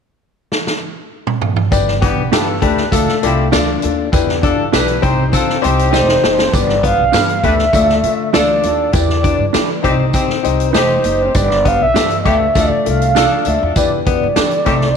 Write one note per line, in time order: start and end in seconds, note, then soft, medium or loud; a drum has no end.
0.52 snare medium
0.67 snare medium
1.27 mid tom medium
1.42 floor tom medium
1.56 floor tom medium
1.71 2.10 G1 loud
1.71 1.93 D4 loud
1.71 1.94 G4 loud
1.71 1.94 B4 medium
1.71 1.94 D5 loud
1.71 kick loud
1.71 closed hi-hat medium
1.71 tambourine medium
1.88 snare soft
2.01 2.22 B3 medium
2.01 2.26 B3 medium
2.01 2.23 D4 medium
2.01 2.26 D4 medium
2.01 2.26 G4 medium
2.01 2.23 G4 medium
2.01 2.24 B4 medium
2.01 2.24 D5 medium
2.01 kick medium
2.01 closed hi-hat medium
2.18 2.30 B1 medium
2.31 2.58 G2 medium
2.31 2.46 B3 medium
2.31 2.54 D4 medium
2.31 2.56 D4 medium
2.31 2.57 F4 medium
2.31 2.54 G4 medium
2.31 2.47 G4 medium
2.31 2.57 A4 medium
2.31 2.54 B4 medium
2.31 2.47 B4 medium
2.31 2.54 D5 medium
2.31 2.47 D5 medium
2.31 snare medium
2.31 closed hi-hat medium
2.31 tambourine medium
2.61 2.87 D2 medium
2.61 2.82 A3 medium
2.61 2.84 D4 medium
2.61 2.87 D4 medium
2.61 2.86 G4 medium
2.61 2.84 G4 medium
2.61 2.86 B4 loud
2.61 2.84 B4 medium
2.61 2.84 D5 medium
2.61 kick medium
2.61 closed hi-hat medium
2.77 snare soft
2.92 3.05 D2 loud
2.92 3.49 A3 medium
2.92 3.16 D4 medium
2.92 3.14 D4 medium
2.92 3.16 F4 medium
2.92 3.14 F4 medium
2.92 3.16 A4 medium
2.92 3.14 A4 medium
2.92 3.15 D5 medium
2.92 kick medium
2.92 closed hi-hat loud
2.92 tambourine medium
3.08 muted upright bass stroke soft
3.08 snare soft
3.22 3.48 C2 medium
3.22 3.48 C4 medium
3.22 3.44 D4 loud
3.22 3.47 E4 medium
3.22 3.44 F4 loud
3.22 3.48 G4 medium
3.22 3.45 A4 loud
3.22 3.45 D5 loud
3.22 closed hi-hat medium
3.52 3.78 D2 medium
3.52 3.67 D4 medium
3.52 4.09 D4 medium
3.52 3.74 D4 loud
3.52 3.67 F4 medium
3.52 3.75 F4 medium
3.52 3.68 A4 medium
3.52 3.75 A4 medium
3.52 3.68 D5 medium
3.52 3.75 D5 loud
3.52 snare loud
3.52 closed hi-hat medium
3.52 tambourine medium
3.82 4.08 D#2 medium
3.82 4.04 D4 medium
3.82 4.04 F4 medium
3.82 4.05 A4 medium
3.82 4.05 D5 medium
3.82 closed hi-hat medium
4.12 4.50 E2 loud
4.12 4.34 D4 loud
4.12 4.34 E4 loud
4.12 4.35 G4 loud
4.12 4.35 B4 loud
4.12 kick loud
4.12 closed hi-hat medium
4.12 tambourine medium
4.29 snare soft
4.42 4.64 D4 medium
4.42 4.67 D4 medium
4.42 4.64 D4 medium
4.42 4.64 E4 medium
4.42 4.67 F4 medium
4.42 4.64 G4 medium
4.42 4.67 A4 medium
4.42 4.65 D5 loud
4.42 kick medium
4.42 closed hi-hat medium
4.60 4.71 G2 medium
4.72 4.98 B1 medium
4.72 4.94 D4 medium
4.72 4.87 D4 medium
4.72 4.95 E4 medium
4.72 4.97 E4 medium
4.72 4.95 G4 medium
4.72 4.88 G4 medium
4.72 4.97 G4 medium
4.72 4.97 B4 medium
4.72 4.95 B4 medium
4.72 4.88 B4 medium
4.72 4.88 D5 medium
4.72 snare loud
4.72 closed hi-hat medium
4.72 tambourine loud
4.88 closed hi-hat soft
5.02 5.28 C2 medium
5.02 5.51 C4 medium
5.02 5.23 C4 medium
5.02 5.51 D#4 medium
5.02 5.27 D#4 medium
5.02 5.27 G4 medium
5.02 5.51 G4 medium
5.02 5.27 C5 medium
5.02 5.51 C5 medium
5.02 kick medium
5.02 closed hi-hat medium
5.32 5.90 C4 medium
5.32 5.57 D4 medium
5.32 5.57 F4 medium
5.32 5.57 A4 loud
5.32 kick medium
5.32 closed hi-hat medium
5.32 tambourine medium
5.49 muted upright bass stroke soft
5.49 snare soft
5.62 5.96 C2 loud
5.62 5.84 C4 loud
5.62 6.20 C4 medium
5.62 5.84 D#4 medium
5.62 6.19 D#4 medium
5.62 6.19 G4 loud
5.62 5.85 G4 loud
5.62 5.85 C5 loud
5.62 closed hi-hat medium
5.79 closed hi-hat medium
5.91 6.19 F1 medium
5.91 6.14 C4 loud
5.91 6.14 D#4 medium
5.91 6.07 D#4 medium
5.91 6.50 D#4 medium
5.91 6.14 G4 medium
5.91 6.08 G4 medium
5.91 6.08 C5 medium
5.91 6.56 C5 loud
5.91 6.15 D5 loud
5.91 6.08 D#5 medium
5.91 snare medium
5.91 tambourine loud
6.09 snare medium
6.22 6.49 F#1 medium
6.22 6.44 C4 medium
6.22 6.45 D#4 medium
6.22 6.45 G4 medium
6.22 6.45 C5 medium
6.22 snare medium
6.39 snare medium
6.52 6.91 G1 loud
6.52 6.75 B3 medium
6.52 6.75 D4 medium
6.52 6.75 G4 medium
6.52 6.75 B4 medium
6.52 6.84 D5 medium
6.52 kick loud
6.52 closed hi-hat medium
6.52 tambourine medium
6.69 snare soft
6.83 7.05 B3 medium
6.83 7.04 B3 medium
6.83 7.05 D4 medium
6.83 7.05 G4 medium
6.83 7.06 B4 medium
6.83 7.46 F5 loud
6.83 kick medium
6.83 closed hi-hat medium
6.99 7.12 B1 medium
7.12 7.39 G2 medium
7.12 7.35 B3 medium
7.12 7.27 D4 medium
7.12 7.35 D4 medium
7.12 7.28 G4 medium
7.12 7.36 G4 medium
7.12 7.28 B4 medium
7.12 7.36 D5 medium
7.12 7.28 D5 medium
7.12 snare loud
7.12 closed hi-hat medium
7.12 tambourine medium
7.29 closed hi-hat soft
7.43 7.69 D2 medium
7.43 7.64 A3 medium
7.43 7.65 B3 medium
7.43 7.53 D4 medium
7.43 7.66 D4 medium
7.43 7.54 G4 medium
7.43 7.66 G4 medium
7.43 7.54 B4 medium
7.43 7.66 B4 medium
7.43 8.35 E5 loud
7.43 kick medium
7.43 closed hi-hat medium
7.59 snare soft
7.73 7.99 D2 loud
7.73 8.30 A3 medium
7.73 7.86 D4 medium
7.73 7.95 D4 medium
7.73 7.86 F4 medium
7.73 7.96 F4 medium
7.73 7.86 A4 medium
7.73 7.96 A4 medium
7.73 7.96 D5 medium
7.73 kick medium
7.73 closed hi-hat medium
7.73 tambourine medium
7.89 snare soft
8.03 8.29 D3 medium
8.03 8.26 D4 medium
8.03 8.26 F4 medium
8.03 8.26 A4 medium
8.03 8.26 E5 medium
8.03 closed hi-hat medium
8.33 8.59 D2 medium
8.33 8.48 D4 medium
8.33 8.56 D4 medium
8.33 8.91 D4 medium
8.33 8.56 F4 medium
8.33 8.48 F4 medium
8.33 8.91 F4 medium
8.33 8.91 A4 loud
8.33 8.49 A4 medium
8.33 8.56 A4 medium
8.33 8.56 D5 medium
8.33 8.49 D5 medium
8.33 8.91 D5 loud
8.33 snare loud
8.33 closed hi-hat medium
8.33 tambourine medium
8.63 8.89 D#2 medium
8.63 8.85 D4 medium
8.63 8.86 F4 medium
8.63 8.86 A4 medium
8.63 8.86 D5 medium
8.63 closed hi-hat medium
8.93 9.31 E2 loud
8.93 9.15 E4 medium
8.93 9.15 G4 medium
8.93 9.16 B4 medium
8.93 9.16 D5 loud
8.93 kick medium
8.93 closed hi-hat medium
8.93 tambourine medium
8.97 9.82 D5 medium
9.10 snare soft
9.22 9.45 D4 medium
9.22 9.45 E4 medium
9.22 9.45 G4 medium
9.22 9.45 B4 medium
9.22 9.45 D5 medium
9.22 kick medium
9.22 closed hi-hat medium
9.39 9.52 G2 medium
9.53 9.68 D4 medium
9.53 9.76 E4 medium
9.53 9.76 G4 medium
9.53 9.69 G4 medium
9.53 9.76 B4 medium
9.53 9.69 B4 medium
9.53 9.76 D5 medium
9.53 9.69 D5 medium
9.53 snare loud
9.53 closed hi-hat medium
9.53 tambourine medium
9.83 10.10 C2 medium
9.83 9.94 C4 medium
9.83 10.05 C4 medium
9.83 10.32 D#4 medium
9.83 9.93 D#4 medium
9.83 10.32 G4 medium
9.83 9.94 G4 loud
9.83 10.32 C5 medium
9.83 9.91 D5 medium
9.83 kick medium
9.83 closed hi-hat medium
9.91 10.36 D#5 loud
10.13 10.27 C4 medium
10.13 10.71 C4 medium
10.13 10.27 D#4 medium
10.13 10.27 G4 medium
10.13 kick medium
10.13 closed hi-hat medium
10.13 tambourine medium
10.29 muted upright bass stroke soft
10.29 snare soft
10.43 10.70 C2 medium
10.43 10.66 D#4 medium
10.43 10.66 G4 medium
10.43 10.66 C5 medium
10.43 10.66 D#5 loud
10.43 closed hi-hat medium
10.60 closed hi-hat medium
10.69 10.88 D#4 medium
10.69 10.78 B4 medium
10.73 10.99 F1 medium
10.73 11.33 C4 medium
10.73 10.96 D#4 medium
10.73 11.31 D#4 medium
10.73 11.32 D#4 medium
10.73 10.89 G4 medium
10.73 10.96 G4 medium
10.73 11.32 G4 loud
10.73 10.96 C5 medium
10.73 10.89 C5 medium
10.73 11.36 C5 medium
10.73 10.97 D#5 medium
10.73 10.89 D#5 medium
10.73 snare loud
10.73 closed hi-hat medium
10.73 tambourine medium
11.03 11.30 F#1 medium
11.03 11.26 D#4 medium
11.03 11.27 G4 medium
11.03 11.27 C5 medium
11.03 11.27 D#5 medium
11.03 closed hi-hat medium
11.34 11.73 G1 loud
11.34 11.57 D4 loud
11.34 11.57 G4 medium
11.34 11.57 B4 medium
11.34 11.57 D5 loud
11.34 11.69 D5 loud
11.34 kick medium
11.34 closed hi-hat medium
11.34 tambourine medium
11.51 snare soft
11.64 11.86 B3 medium
11.64 11.86 D4 medium
11.64 11.87 G4 medium
11.64 11.87 B4 medium
11.64 11.87 D5 medium
11.64 11.82 F5 loud
11.64 kick medium
11.64 closed hi-hat medium
11.80 11.93 B1 medium
11.80 12.17 E5 loud
11.94 12.20 G2 medium
11.94 12.09 D4 medium
11.94 12.17 D4 medium
11.94 12.10 G4 medium
11.94 12.17 G4 medium
11.94 12.17 B4 medium
11.94 12.10 B4 medium
11.94 12.17 D5 medium
11.94 12.10 D5 medium
11.94 snare loud
11.94 closed hi-hat medium
11.94 tambourine medium
12.10 closed hi-hat soft
12.21 12.29 D#5 medium
12.25 12.51 D2 medium
12.25 12.46 A3 medium
12.25 12.35 B3 medium
12.25 12.47 D4 medium
12.25 12.35 D4 medium
12.25 12.47 G4 medium
12.25 12.35 G4 loud
12.25 12.47 B4 medium
12.25 12.60 E5 loud
12.25 12.48 F5 medium
12.25 kick medium
12.25 closed hi-hat medium
12.55 12.68 D2 loud
12.55 13.12 A3 medium
12.55 12.68 D4 medium
12.55 12.77 D4 medium
12.55 12.68 F4 medium
12.55 12.77 F4 medium
12.55 12.68 A4 medium
12.55 12.78 A4 medium
12.55 12.78 D5 loud
12.55 12.87 D5 loud
12.55 kick medium
12.55 closed hi-hat medium
12.55 tambourine medium
12.71 muted upright bass stroke soft
12.85 13.24 C2 medium
12.85 13.07 D4 medium
12.85 13.07 F4 medium
12.85 13.07 A4 medium
12.85 13.08 D5 medium
12.85 closed hi-hat medium
12.89 13.49 F5 loud
13.02 closed hi-hat medium
13.15 13.30 D4 medium
13.15 13.37 D4 medium
13.15 13.73 D4 medium
13.15 13.74 D4 medium
13.15 13.37 F4 medium
13.15 13.30 F4 medium
13.15 13.73 F4 medium
13.15 13.38 A4 medium
13.15 13.73 A4 loud
13.15 13.31 A4 medium
13.15 13.31 D5 medium
13.15 13.38 D5 medium
13.15 snare loud
13.15 closed hi-hat medium
13.15 tambourine medium
13.45 13.58 D2 medium
13.45 13.68 D4 medium
13.45 13.68 F4 medium
13.45 13.68 A4 medium
13.45 13.77 E5 medium
13.45 13.68 F5 medium
13.45 closed hi-hat medium
13.62 13.74 E2 medium
13.75 14.14 E2 loud
13.75 13.97 D4 medium
13.75 13.98 E4 medium
13.75 13.98 G4 medium
13.75 13.98 B4 loud
13.75 13.91 D5 medium
13.75 kick loud
13.75 closed hi-hat medium
13.75 tambourine medium
14.05 14.27 B3 medium
14.05 14.27 D4 medium
14.05 14.28 E4 medium
14.05 14.28 G4 medium
14.05 14.28 B4 medium
14.05 14.97 D5 loud
14.05 kick medium
14.05 closed hi-hat medium
14.23 14.35 G2 medium
14.35 14.62 E3 medium
14.35 14.58 D4 medium
14.35 14.51 D4 medium
14.35 14.58 E4 medium
14.35 14.51 G4 medium
14.35 14.58 G4 medium
14.35 14.58 A4 medium
14.35 14.51 B4 medium
14.35 14.52 D5 medium
14.35 snare medium
14.35 closed hi-hat medium
14.35 tambourine medium
14.51 closed hi-hat soft
14.65 14.92 C2 medium
14.65 14.87 A3 medium
14.65 14.97 C4 medium
14.65 14.75 C4 medium
14.65 14.75 D#4 medium
14.65 14.97 D#4 medium
14.65 14.75 G4 loud
14.65 14.97 G4 medium
14.65 14.97 C5 medium
14.65 kick medium
14.65 closed hi-hat medium
14.81 snare soft